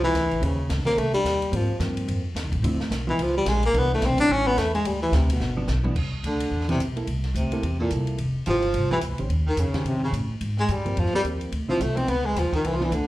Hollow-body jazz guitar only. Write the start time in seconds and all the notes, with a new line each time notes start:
0.41 D#3 C#4 G4 C5
0.85 D#3 C#4 G4 C5
1.52 F3 A#3 C4
1.81 F3 A#3 C4
2.64 D3 F3 C4 E4
3.07 F3 B3 D#4
3.74 E3 B3 D4
4.19 G3 C#4 E4
5.57 F3 B3 D4
5.84 E3 B3 D4
6.69 E3 B3 D4
6.96 A#3 E4 A4
7.53 A#3 E4 A4
7.81 A#3 E4 A4
8.47 F3 A3 E4 G4
8.91 F3 A3 E4 G4
9.19 D#3 C#4 G4 C5
9.74 D#3 C#4 G4 C5
10.85 F3 A#3 C4
11.14 F3 A#3 C4
11.68 D3 F3 C4 E4
11.97 F3 B3 D#4
12.80 E3 B3 D4